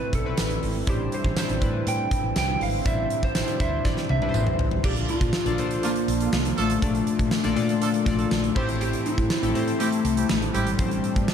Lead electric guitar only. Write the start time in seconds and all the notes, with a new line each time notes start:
Already playing: B4
0.15 A4
0.90 G4
1.14 C5
1.39 C5
1.88 G5
2.38 G5
2.63 F5
2.87 E5
3.25 C5
3.61 E5
3.86 D5
4.10 E5
4.85 G4
5.10 F4
5.85 A#3
6.34 A#3
6.59 A3
6.84 A3
8.82 G4
9.06 E4
9.80 A3
10.05 A3
10.29 A3
10.54 G3
10.80 G3